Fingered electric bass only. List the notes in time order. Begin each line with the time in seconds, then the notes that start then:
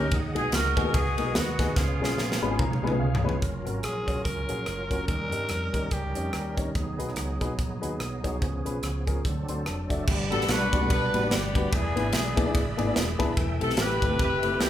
0.12 D#2
0.35 B1
0.52 C#2
0.77 D#2
0.94 C#2
1.19 B1
1.36 D#2
1.77 C#2
2.00 B1
2.18 A#1
2.42 G#1
2.59 A#1
2.83 B1
3.01 C#2
3.42 F#1
3.65 G#1
3.83 A#1
4.08 B1
4.25 C#2
4.49 A#1
4.66 F#1
5.08 D#2
5.32 G2
5.50 F2
5.74 D#2
5.92 C#2
6.16 F2
6.33 D#2
6.75 D#2
6.99 B1
7.16 C#2
7.41 B1
7.59 A#1
7.83 D#2
8.00 B1
8.24 C2
8.42 C#2
8.66 B1
8.83 C#2
9.25 D2
9.49 D2
9.66 F1
9.90 F#1
10.08 G1
10.30 A1
10.49 B1
10.73 C2
10.90 B1
11.14 A1
11.31 G1
11.72 E1
11.96 G#1
12.14 B1
12.54 A1
12.79 G#1
12.96 E1
13.20 D#1
13.37 E1
13.61 B1
13.78 A1
14.02 G1
14.19 F#1
14.60 C2